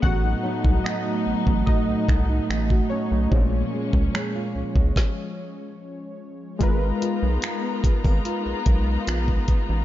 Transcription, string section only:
\new Staff \with { instrumentName = "String section" } { \time 4/4 \key gis \dorian \tempo 4 = 73 <fis b dis'>1 | <gis ais cis'>2 r2 | <gis b dis' eis' ais''>1 | }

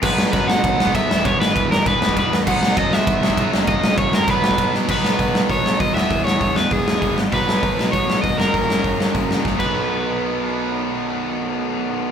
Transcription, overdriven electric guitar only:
\new Staff \with { instrumentName = "Overdriven electric guitar" } { \time 4/4 \key b \major \tempo 4 = 198 b'4 b'8 fis''4. e''4 | cis''8 b'4 ais'8 b'4 b'8. r16 | fis''4 dis''8 e''2~ e''8 | dis''4 cis''8 ais'8 b'4. r8 |
b'2 cis''4 dis''8 e''8~ | e''8 cis''4 b'8 gis'4. r8 | b'2 cis''4 dis''8 ais'8~ | ais'2. r8 b'8~ |
b'1~ | b'1 | }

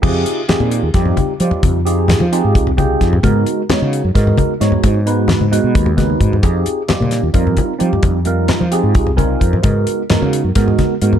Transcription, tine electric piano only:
\new Staff \with { instrumentName = "Tine electric piano" } { \time 7/8 \key aes \lydian \tempo 4 = 131 << { r2. r8 | r2 r8 g''4 | r2. r8 | r2. r8 |
r2. r8 | r2 r8 aes''8 c''8 | r2. r8 | } \\ { <c' ees' f' g' aes'>4 <c' ees' f' g' aes'>4 <g c' ees' f' g'>4 <g c' ees' f' g'>8~ | <g c' ees' f' g'>8 <c' ees' f' g' aes'>4 <c' ees' f' g' aes'>4 <c' ees' f' g' aes'>4 | <aes ces' ees' ges' bes'>4 <aes ces' ees' ges' des''>4 <aes ces' ees' ges' bes'>4 <aes ces' ees' ges' des''>8~ | <aes ces' ees' ges' des''>8 <aes ces' ees' ges' ces''>4 <aes ces' ees' ges' ces''>4 <aes ces' ees' ges' ces''>4 |
<c' ees' f' g' aes'>4 <g c' ees' f' g'>4 <g c' ees' f' bes'>4 <g c' ees' f' g'>8~ | <g c' ees' f' g'>8 <g c' ees' f' bes'>4 <c' ees' f' g' aes'>4 <g c' ees' f' bes'>4 | <aes ces' ees' ges' bes'>4 <aes ces' ees' ges' bes'>4 <aes ces' ees' ges' bes'>4 <aes ces' ees' ges' bes'>8 | } >> }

